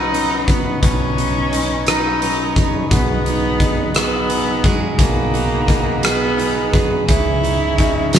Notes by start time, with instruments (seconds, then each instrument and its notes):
Already playing: fretless electric bass B1, steel-string acoustic guitar B2 F#3 C#4 D#4 B4, clean electric guitar F#3 D#4, cello D#4, tonewheel organ B4 D#5 F#5 C#6
0.12 clean electric guitar C#4, steel-string acoustic guitar D#4, closed hi-hat
0.47 clean electric guitar F#3, cello B3, steel-string acoustic guitar B4, kick, closed hi-hat
0.81 fretless electric bass B1, steel-string acoustic guitar B2, clean electric guitar F#3, cello C#4, tonewheel organ G#5, kick, closed hi-hat
1.17 clean electric guitar F#3, steel-string acoustic guitar D#4, closed hi-hat
1.52 steel-string acoustic guitar C#4, clean electric guitar D#4, closed hi-hat
1.86 clean electric guitar F#3, cello D#4, steel-string acoustic guitar B4, cross-stick, closed hi-hat
2.21 clean electric guitar C#4, steel-string acoustic guitar D#4, closed hi-hat
2.56 clean electric guitar F#3, steel-string acoustic guitar B4, kick, closed hi-hat
2.90 fretless electric bass B1, steel-string acoustic guitar B2, clean electric guitar F#3, cello B3, tonewheel organ G#4 F#5 B5, kick, closed hi-hat
3.25 clean electric guitar F#3, steel-string acoustic guitar D#4, closed hi-hat
3.60 clean electric guitar D#4, kick, closed hi-hat
3.94 clean electric guitar F#3, cello B3, steel-string acoustic guitar G#4, cross-stick, closed hi-hat
4.30 steel-string acoustic guitar D#4, closed hi-hat
4.64 clean electric guitar F#3, cello G#3, steel-string acoustic guitar G#4, kick, closed hi-hat
4.98 fretless electric bass B1, steel-string acoustic guitar B2, clean electric guitar F#3, cello A#3, kick, closed hi-hat
5.33 clean electric guitar F#3, steel-string acoustic guitar D#4, closed hi-hat
5.68 clean electric guitar D#4, kick, closed hi-hat
6.03 clean electric guitar F#3, cello B3, steel-string acoustic guitar G#4, cross-stick, closed hi-hat
6.37 clean electric guitar B3, steel-string acoustic guitar D#4, closed hi-hat
6.73 clean electric guitar F#3, steel-string acoustic guitar G#4, kick, closed hi-hat
7.07 fretless electric bass C#2, steel-string acoustic guitar C#3, clean electric guitar E3, cello E4, tonewheel organ G#4 C#5 D#5 C#6, kick, closed hi-hat
7.43 clean electric guitar E3, steel-string acoustic guitar D#4, closed hi-hat
7.78 steel-string acoustic guitar C#4, clean electric guitar D#4, kick, closed hi-hat
8.13 clean electric guitar E3, cello E4, steel-string acoustic guitar G#4, snare, closed hi-hat